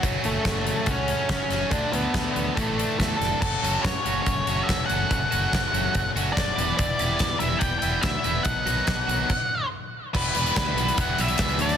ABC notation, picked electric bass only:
X:1
M:4/4
L:1/8
Q:1/4=142
K:Edor
V:1 name="Picked electric bass" clef=bass
F,,, F,,, F,,,2 C,,2 F,,, F,,, | D,, D,, D,, D,, A,,,2 E,, =F,,, | F,,, F,,, F,, F,,, F,,, F,,, E,,, F,,, | F,,, F,,, F,,, F,,, F,,, F,,, F,,, E,,, |
E,,, E,,, E,, E,,, E,,, E,,, D,, E,,, | B,,, B,,, B,,, B,,, z4 | E,,, E,,, D,, B,,, E,,, B,,, C,, D,, |]